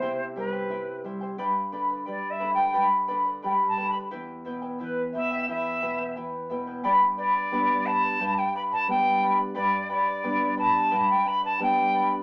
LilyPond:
<<
  \new Staff \with { instrumentName = "Quena" } { \time 2/4 \key g \major \tempo 4 = 88 c''16 r16 b'4 r8 | r4 \tuplet 3/2 { d''8 e''8 g''8~ } | g''16 r8. \tuplet 3/2 { g''8 a''8 b''8~ } | b''16 r8. b'16 r16 e''8 |
e''4 r4 | d''8 d''4 a''8~ | a''16 g''16 b''16 a''16 g''8. r16 | d''8 d''4 a''8~ |
a''16 g''16 b''16 a''16 g''8. r16 | }
  \new Staff \with { instrumentName = "Quena" } { \time 2/4 \key g \major e''8 c''4 r8 | r4 \tuplet 3/2 { d''8 e''8 g''8 } | r4 \tuplet 3/2 { g''8 a''8 b''8 } | r4 b'8 e''8 |
e''4 r4 | r2 | r2 | r2 |
r2 | }
  \new Staff \with { instrumentName = "Charango" } { \time 2/4 \key g \major <e' g' c'' e'' g''>8 <e' c'' e'' g''>16 <e' c'' g''>16 <e' e'' g''>8 <e' c'' e'' g''>16 <e' c'' g''>16 | <g' b' d'' g'' b''>8 <b' d'' g'' b''>16 <b' d'' b''>16 <b' d'' g'' b''>8 <b' d'' g'' b''>16 <b' d'' b''>16 | <g' b' d'' g'' b''>8 <b' d'' g'' b''>16 <b' d'' b''>16 <b' d'' g'' b''>8 <b' d'' g'' b''>16 <b' d'' b''>16 | <e' g' b' e'' g''>8 <e' b' e'' g''>16 <e' b' g''>16 <e' b' e'' g''>8 <e' b' e'' g''>16 <e' b' g''>16 |
<e' g' b' e'' g''>8 <e' b' e'' g''>16 <e' b' g''>16 <e' b' e'' g''>8 <e' b' e'' g''>16 <e' b' g''>16 | <g' b' d'' g'' b''>8 <b' d'' g'' b''>16 <b' d'' b''>16 <b' d'' g'' b''>8 <b' d'' g'' b''>16 <b' d'' b''>16 | <g' b' d'' g'' b''>8 <b' d'' g'' b''>16 <b' d'' b''>16 <b' d'' g'' b''>8 <b' d'' g'' b''>16 <b' d'' b''>16 | <g' b' d'' g'' b''>8 <b' d'' g'' b''>16 <b' d'' b''>16 <b' d'' g'' b''>8 <b' d'' g'' b''>16 <b' d'' b''>16 |
<g' b' d'' g'' b''>8 <b' d'' g'' b''>16 <b' d'' b''>16 <b' d'' g'' b''>8 <b' d'' g'' b''>16 <b' d'' b''>16 | }
  \new Staff \with { instrumentName = "Nylon-string guitar" } { \clef bass \time 2/4 \key g \major c8 g8 e'8 g8 | g,8 d8 g8 d8 | g,8 d8 g8 d8 | e,8 b,8 e8 b,8 |
e,8 b,8 e8 b,8 | g,4 <g b d'>4 | g,4 <g b d'>4 | g,4 <g b d'>4 |
g,4 <g b d'>4 | }
>>